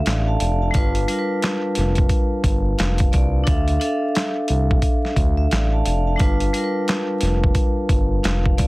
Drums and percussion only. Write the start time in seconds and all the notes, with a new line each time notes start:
0.06 snare, clap, closed hi-hat
0.40 closed hi-hat
0.74 kick, closed hi-hat
0.95 closed hi-hat
1.08 closed hi-hat
1.42 snare, clap, closed hi-hat
1.75 snare, closed hi-hat
1.95 kick, closed hi-hat
2.09 kick, closed hi-hat
2.44 kick, closed hi-hat
2.79 snare, clap, closed hi-hat
2.98 kick, closed hi-hat
3.13 kick, closed hi-hat
3.47 kick, closed hi-hat
3.68 closed hi-hat
3.81 closed hi-hat
4.15 snare, clap, closed hi-hat
4.48 closed hi-hat
4.71 kick
4.82 kick, closed hi-hat
5.05 snare
5.16 kick, closed hi-hat
5.51 snare, clap, closed hi-hat
5.86 closed hi-hat
6.19 kick, closed hi-hat
6.40 closed hi-hat
6.54 closed hi-hat
6.88 snare, clap, closed hi-hat
7.21 snare, closed hi-hat
7.44 kick
7.55 kick, closed hi-hat
7.89 kick, closed hi-hat
8.24 snare, clap, closed hi-hat
8.46 kick
8.58 kick, closed hi-hat